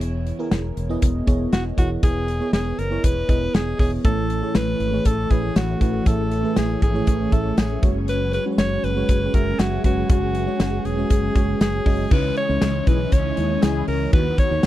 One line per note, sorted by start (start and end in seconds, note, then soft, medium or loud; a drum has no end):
0.00 0.31 E1 loud
0.00 0.48 E3 medium
0.00 0.26 B3 medium
0.00 0.26 E4 medium
0.00 0.27 G#4 medium
0.00 0.27 C#5 medium
0.00 closed hi-hat medium
0.27 closed hi-hat medium
0.39 0.75 B3 medium
0.39 0.75 E4 medium
0.39 0.75 G#4 medium
0.39 0.75 A#4 loud
0.51 0.70 E1 loud
0.51 snare loud
0.51 closed hi-hat medium
0.77 0.95 E1 medium
0.77 closed hi-hat medium
0.89 1.16 B3 medium
0.89 1.17 E4 medium
0.89 1.17 G#4 medium
0.89 1.17 D#5 loud
1.02 1.20 E1 loud
1.02 kick medium
1.02 closed hi-hat loud
1.27 1.46 E1 medium
1.27 1.63 B3 medium
1.27 1.63 E4 medium
1.27 1.63 G#4 medium
1.27 1.64 C#5 loud
1.27 kick medium
1.27 closed hi-hat medium
1.53 1.71 E1 loud
1.53 1.64 F#4 medium
1.53 snare loud
1.53 closed hi-hat medium
1.77 1.96 E1 medium
1.77 2.49 E3 medium
1.77 1.95 B3 medium
1.77 1.96 E4 medium
1.77 1.89 F#4 medium
1.77 1.96 G#4 medium
1.77 1.96 C#5 medium
1.77 kick medium
1.77 closed hi-hat medium
2.02 2.39 E1 loud
2.02 2.30 B3 medium
2.02 2.30 E4 medium
2.02 2.30 G#4 medium
2.02 2.50 G#4 loud
2.02 2.30 B4 medium
2.02 kick loud
2.02 closed hi-hat loud
2.28 closed hi-hat medium
2.40 2.77 B3 medium
2.40 2.77 E4 medium
2.40 2.77 G#4 medium
2.40 2.77 C#5 medium
2.53 2.71 E1 loud
2.53 2.81 G#4 medium
2.53 snare loud
2.53 closed hi-hat medium
2.79 2.97 F#1 medium
2.79 3.05 A#4 loud
2.79 closed hi-hat medium
2.90 3.18 B3 medium
2.90 3.18 E4 medium
2.90 3.18 G#4 medium
2.90 3.18 C#5 medium
3.04 3.22 E1 medium
3.04 3.56 B4 loud
3.04 kick medium
3.04 closed hi-hat loud
3.28 3.47 E1 loud
3.28 3.65 B3 medium
3.28 3.65 E4 medium
3.28 3.65 G#4 medium
3.28 3.65 D#5 medium
3.28 kick medium
3.28 closed hi-hat medium
3.54 3.72 E1 medium
3.54 3.80 G#4 loud
3.54 snare loud
3.54 closed hi-hat medium
3.79 3.98 E1 medium
3.79 3.97 B3 medium
3.79 3.97 E4 medium
3.79 3.98 G#4 medium
3.79 3.91 G#4 medium
3.79 3.98 C#5 medium
3.79 kick medium
3.79 open hi-hat medium
4.04 4.41 A1 loud
4.04 4.76 A2 medium
4.04 7.79 E3 medium
4.04 4.31 A3 medium
4.04 7.79 A3 medium
4.04 12.07 C#4 medium
4.04 4.31 E4 medium
4.04 4.32 G#4 medium
4.04 4.57 A4 loud
4.04 4.32 C#5 medium
4.04 kick loud
4.04 closed hi-hat medium
4.30 closed hi-hat medium
4.42 4.78 A3 medium
4.42 4.78 E4 medium
4.42 4.79 G#4 medium
4.42 4.79 C#5 medium
4.55 4.73 A1 medium
4.55 5.08 B4 loud
4.55 snare loud
4.55 closed hi-hat medium
4.55 tambourine medium
4.80 4.98 G#1 medium
4.80 closed hi-hat medium
4.92 5.20 A3 medium
4.92 5.20 E4 medium
4.92 5.20 G#4 medium
4.92 5.20 C#5 medium
5.05 5.24 A1 loud
5.05 5.33 A4 loud
5.05 kick medium
5.05 closed hi-hat loud
5.30 5.49 A1 loud
5.30 5.66 A3 medium
5.30 5.67 E4 medium
5.30 5.67 G#4 medium
5.30 5.58 G#4 medium
5.30 5.67 B4 medium
5.30 kick medium
5.30 closed hi-hat medium
5.56 5.74 A1 medium
5.56 5.81 F#4 medium
5.56 snare loud
5.56 closed hi-hat medium
5.56 tambourine medium
5.81 5.99 A1 loud
5.81 5.99 A3 medium
5.81 5.99 E4 medium
5.81 6.09 F#4 medium
5.81 5.99 G#4 medium
5.81 5.99 B4 medium
5.81 kick medium
5.81 closed hi-hat medium
6.05 6.43 A1 loud
6.05 6.78 A2 medium
6.05 6.33 A3 medium
6.05 6.33 E4 medium
6.05 6.33 G#4 medium
6.05 6.57 A4 loud
6.05 6.34 E5 medium
6.05 kick loud
6.05 closed hi-hat medium
6.31 closed hi-hat medium
6.43 6.80 A3 medium
6.43 6.80 E4 medium
6.43 6.80 G#4 medium
6.43 6.80 B4 medium
6.56 6.75 A1 medium
6.56 6.81 G#4 medium
6.56 snare loud
6.56 closed hi-hat medium
6.56 tambourine medium
6.82 7.00 G#1 medium
6.82 7.35 G#4 medium
6.82 kick medium
6.82 closed hi-hat medium
6.94 7.21 A3 medium
6.94 7.21 E4 medium
6.94 7.22 G#4 medium
6.94 7.22 C#5 medium
7.07 7.26 A1 loud
7.07 kick medium
7.07 closed hi-hat loud
7.31 7.50 A1 loud
7.31 7.68 A3 medium
7.31 7.68 E4 medium
7.31 7.68 G#4 medium
7.31 7.58 A4 medium
7.31 7.68 E5 medium
7.31 kick medium
7.31 closed hi-hat medium
7.58 7.76 A1 medium
7.58 7.82 G#4 medium
7.58 snare loud
7.58 closed hi-hat medium
7.58 tambourine medium
7.82 8.37 F#1 loud
7.82 12.07 F#3 medium
7.82 8.33 G#3 medium
7.82 8.33 C#4 medium
7.82 8.33 F#4 medium
7.82 12.07 G#4 medium
7.82 8.33 C#5 medium
7.82 kick loud
7.82 closed hi-hat medium
8.08 8.32 B4 loud
8.08 closed hi-hat medium
8.33 8.45 B4 loud
8.33 closed hi-hat medium
8.45 8.81 G#3 medium
8.45 8.82 C#4 medium
8.45 8.82 F#4 medium
8.45 8.52 B4 medium
8.52 8.85 C#5 medium
8.58 8.76 F#1 medium
8.58 8.86 C#5 loud
8.58 snare loud
8.58 closed hi-hat medium
8.58 tambourine medium
8.84 9.02 F#1 loud
8.84 9.36 B4 loud
8.84 closed hi-hat medium
8.96 9.23 G#3 medium
8.96 9.23 C#4 medium
8.96 9.23 F#4 medium
8.96 9.24 C#5 medium
9.09 9.27 F#1 loud
9.09 kick medium
9.09 closed hi-hat loud
9.34 9.52 F#1 medium
9.34 9.70 G#3 medium
9.34 9.70 C#4 medium
9.34 9.70 F#4 medium
9.34 9.61 A#4 loud
9.34 9.70 E5 medium
9.34 kick medium
9.34 closed hi-hat medium
9.59 9.77 F#1 loud
9.59 9.85 F#4 medium
9.59 snare loud
9.59 closed hi-hat medium
9.59 tambourine medium
9.84 10.03 F#1 medium
9.84 10.02 G#3 medium
9.84 10.02 C#4 medium
9.84 10.03 F#4 medium
9.84 10.08 F#4 medium
9.84 10.03 B4 medium
9.84 kick medium
9.84 closed hi-hat medium
10.09 10.46 F#1 loud
10.09 10.36 G#3 medium
10.09 10.37 C#4 medium
10.09 10.37 F#4 medium
10.09 10.87 F#4 medium
10.09 10.37 C#5 medium
10.09 kick loud
10.09 closed hi-hat loud
10.35 closed hi-hat medium
10.47 10.83 G#3 medium
10.47 10.83 C#4 medium
10.47 10.83 F#4 medium
10.47 10.84 C#5 medium
10.60 10.78 F#1 medium
10.60 snare loud
10.60 closed hi-hat medium
10.60 tambourine medium
10.85 11.03 E1 medium
10.85 11.61 G#4 medium
10.85 closed hi-hat medium
10.97 11.25 G#3 medium
10.97 11.25 C#4 medium
10.97 11.25 F#4 medium
10.97 11.25 C#5 medium
11.10 11.29 F#1 loud
11.10 kick medium
11.10 closed hi-hat loud
11.35 11.54 F#1 loud
11.35 11.71 G#3 medium
11.35 11.72 C#4 medium
11.35 11.72 F#4 medium
11.35 11.72 C#5 medium
11.35 kick medium
11.35 closed hi-hat medium
11.61 11.79 F#1 medium
11.61 12.14 G#4 loud
11.61 snare loud
11.61 closed hi-hat medium
11.61 tambourine medium
11.85 12.04 F#1 loud
11.85 12.04 G#3 medium
11.85 12.04 C#4 medium
11.85 12.04 F#4 medium
11.85 12.04 D#5 loud
11.85 kick medium
11.85 open hi-hat medium
12.11 12.29 C#2 loud
12.11 12.60 C#3 medium
12.11 12.83 C#3 medium
12.11 14.11 E3 medium
12.11 12.38 G#3 medium
12.11 12.61 G#3 medium
12.11 12.38 C#4 medium
12.11 14.11 C#4 medium
12.11 12.62 C#4 medium
12.11 12.38 D#4 medium
12.11 12.38 E4 medium
12.11 12.37 B4 loud
12.11 12.38 C#5 medium
12.11 14.11 D#5 medium
12.11 kick loud
12.11 crash loud
12.37 12.89 C#5 loud
12.37 closed hi-hat medium
12.48 12.58 C#2 medium
12.48 13.12 G#3 medium
12.48 13.12 C#4 medium
12.48 13.12 D#4 medium
12.48 13.12 E4 medium
12.48 13.12 C#5 medium
12.61 12.80 C#2 loud
12.61 13.10 C#3 medium
12.61 13.12 G#3 medium
12.61 13.13 C#4 medium
12.61 snare loud
12.61 closed hi-hat medium
12.61 tambourine medium
12.87 13.05 B1 loud
12.87 12.98 G#3 medium
12.87 12.98 E4 medium
12.87 12.98 G#4 medium
12.87 13.14 B4 loud
12.87 kick loud
12.87 closed hi-hat medium
13.11 13.30 C#2 loud
13.11 14.12 C#3 medium
13.11 14.13 G#3 medium
13.11 13.64 C#5 loud
13.11 kick medium
13.11 closed hi-hat loud
13.16 14.14 C#4 medium
13.37 13.56 D#2 medium
13.37 13.91 G#3 medium
13.37 13.91 C#4 medium
13.37 13.92 D#4 medium
13.37 13.92 E4 medium
13.37 13.92 C#5 medium
13.37 closed hi-hat medium
13.62 13.81 C#2 medium
13.62 13.84 G#3 medium
13.62 13.84 E4 medium
13.62 13.84 G#4 loud
13.62 13.88 G#4 medium
13.62 snare loud
13.62 closed hi-hat medium
13.62 tambourine medium
13.88 14.06 C#2 loud
13.88 14.11 A#4 medium
13.88 open hi-hat medium
14.13 14.31 D#2 loud
14.13 14.62 B2 medium
14.13 14.67 D#3 medium
14.13 14.63 F#3 medium
14.13 14.67 B3 medium
14.13 14.64 B3 medium
14.13 14.40 D#4 medium
14.13 14.67 F#4 medium
14.13 14.40 F#4 medium
14.13 14.37 B4 loud
14.13 14.40 B4 medium
14.13 kick loud
14.13 closed hi-hat loud
14.38 14.67 C#5 loud
14.38 kick loud
14.38 closed hi-hat medium
14.51 14.60 D#2 loud
14.51 14.67 D#4 medium
14.51 14.67 F#4 medium
14.51 14.67 C#5 medium
14.63 14.67 D#2 medium
14.63 14.67 B2 medium
14.63 snare loud
14.63 closed hi-hat medium
14.63 tambourine medium